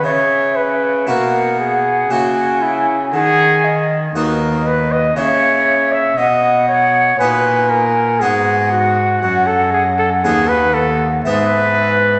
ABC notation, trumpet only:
X:1
M:3/4
L:1/16
Q:1/4=59
K:B
V:1 name="Trumpet"
c2 B2 A2 G2 F2 E2 | G3 z A2 B d c3 e | d2 c2 B2 A2 G2 F2 | [K:Bmix] F A G A G B A z B4 |]